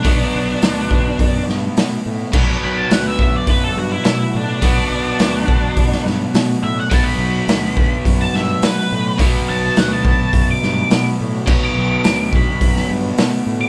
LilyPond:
<<
  \new Staff \with { instrumentName = "Lead electric guitar" } { \time 4/4 \key b \minor \tempo 4 = 105 d'2~ d'8 r4. | r8 b''16 a''16 fis''16 e''16 e''16 d''16 b'16 a'16 fis'16 e'16 e'8 d'8~ | d'2~ d'8 r4 e''16 fis''16 | a''16 b''2 a''16 e''8 b'4 |
r8 a''8 fis''16 a''4 d'''4 r8. | r16 d'''4~ d'''16 b''4 r4 r16 d'''16 | }
  \new Staff \with { instrumentName = "Tonewheel organ" } { \time 4/4 \key b \minor r1 | <d' fis' b'>1 | <b d' fis'>1 | <fis b d'>1 |
<fis b d'>1 | <d fis b>1 | }
  \new Staff \with { instrumentName = "Overdriven electric guitar" } { \clef bass \time 4/4 \key b \minor <b, fis b>1 | <b, fis b>1 | <b, fis b>1 | <b, fis b>1 |
<b, fis b>1 | <b, fis b>1 | }
  \new Staff \with { instrumentName = "Fingered electric bass" } { \clef bass \time 4/4 \key b \minor b,,8 b,,8 d,4 fis,8 g,8 b,8 a,8 | b,,8 b,,8 d,4 fis,8 g,8 b,8 a,8 | b,,8 b,,8 d,4 fis,8 g,8 b,8 a,8 | b,,8 b,,8 d,4 fis,8 g,8 b,8 a,8 |
b,,8 b,,8 d,4 fis,8 g,8 b,8 a,8 | b,,8 b,,8 d,4 fis,8 g,8 b,8 a,8 | }
  \new DrumStaff \with { instrumentName = "Drums" } \drummode { \time 4/4 <hho bd>4 <hho sn>8 bd8 <hho bd>8 sn8 <hho sn>4 | <cymc bd>4 <hho sn>8 bd8 <hho bd>4 <hho sn>4 | <hho bd>4 <hho sn>8 bd8 <hho bd>16 sn16 sn8 <hho sn>4 | <hho bd>4 <hho sn>8 bd8 <hho bd>8 sn8 <hho sn>4 |
<hho bd>4 <hho sn>8 bd8 <hho bd>8 sn8 <hho sn>4 | <cymc bd>4 <hho sn>8 bd8 <hho bd>16 sn8. <hho sn>4 | }
>>